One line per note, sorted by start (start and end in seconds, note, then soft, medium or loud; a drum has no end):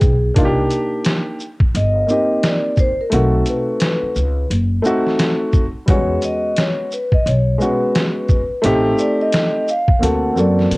0.00 0.30 B1 medium
0.00 0.11 G#3 medium
0.00 0.12 B3 medium
0.00 0.12 D#4 medium
0.00 0.33 G#4 medium
0.00 0.13 G5 medium
0.00 kick medium
0.00 closed hi-hat soft
0.00 shaker soft
0.34 0.64 C2 loud
0.34 1.39 A#3 medium
0.34 1.39 D4 medium
0.34 1.40 D#4 medium
0.34 0.45 F4 medium
0.34 kick loud
0.34 closed hi-hat loud
0.45 1.44 G4 loud
0.71 closed hi-hat medium
0.71 shaker medium
1.05 snare loud
1.05 closed hi-hat medium
1.40 shaker medium
1.60 kick loud
1.75 2.02 G1 loud
1.75 2.08 D#5 loud
1.75 closed hi-hat medium
2.07 2.87 A#3 medium
2.07 2.88 C4 medium
2.07 2.88 D#4 medium
2.07 2.89 G4 medium
2.07 shaker medium
2.12 2.46 D#5 loud
2.43 2.77 D5 loud
2.43 snare loud
2.43 closed hi-hat medium
2.77 3.00 C5 loud
2.77 kick medium
2.77 shaker soft
3.01 3.14 A#4 medium
3.10 3.40 B1 loud
3.10 4.14 A3 medium
3.10 4.15 C4 medium
3.10 4.16 D#4 medium
3.10 3.49 A4 medium
3.10 closed hi-hat loud
3.14 4.16 F#4 medium
3.46 4.47 B4 medium
3.46 closed hi-hat medium
3.46 shaker medium
3.80 snare loud
3.80 closed hi-hat medium
4.02 muted upright bass stroke soft
4.16 4.44 C#2 loud
4.16 shaker medium
4.50 4.78 F#1 medium
4.50 closed hi-hat medium
4.82 5.62 A3 medium
4.82 5.63 C4 medium
4.82 5.64 D#4 medium
4.82 5.64 F#4 loud
4.82 shaker medium
5.07 snare soft
5.19 snare loud
5.19 closed hi-hat medium
5.53 kick medium
5.53 shaker soft
5.86 6.16 E2 loud
5.86 5.95 G3 medium
5.86 6.91 B3 medium
5.86 6.91 C#4 medium
5.86 kick loud
5.86 closed hi-hat loud
5.90 6.93 G#3 medium
5.90 6.92 F#4 medium
5.90 6.21 C#5 loud
6.22 6.59 D#5 loud
6.22 closed hi-hat medium
6.22 shaker medium
6.56 6.90 C#5 medium
6.56 snare loud
6.56 closed hi-hat medium
6.92 7.12 B4 medium
6.92 shaker medium
7.12 7.27 D#5 loud
7.12 kick loud
7.26 7.54 B1 medium
7.26 7.62 C#5 loud
7.26 closed hi-hat medium
7.58 8.38 G#3 medium
7.58 8.39 B3 medium
7.58 8.40 C#4 medium
7.58 8.40 F#4 medium
7.58 8.61 B4 medium
7.58 shaker medium
7.95 snare loud
7.95 closed hi-hat medium
8.29 kick medium
8.29 shaker soft
8.62 8.92 A1 loud
8.62 9.66 A3 loud
8.62 9.67 C4 medium
8.62 9.67 D#4 medium
8.62 9.68 G4 loud
8.62 closed hi-hat loud
8.98 9.19 D5 medium
8.98 shaker medium
9.21 9.70 D#5 loud
9.33 snare loud
9.33 closed hi-hat medium
9.68 10.01 F5 loud
9.68 shaker medium
9.88 kick loud
9.99 10.37 D2 loud
9.99 10.30 A#3 medium
9.99 10.30 C4 medium
9.99 10.31 F#4 medium
9.99 10.31 A4 medium
9.99 closed hi-hat medium
10.05 10.35 F#5 loud
10.34 10.65 F#2 medium
10.34 10.78 A#3 medium
10.34 10.78 C4 medium
10.34 10.78 F#4 medium
10.34 10.78 A4 medium
10.34 shaker medium
10.39 10.70 D5 loud
10.59 snare soft
10.71 10.78 D3 medium
10.71 10.78 C5 medium
10.71 closed hi-hat medium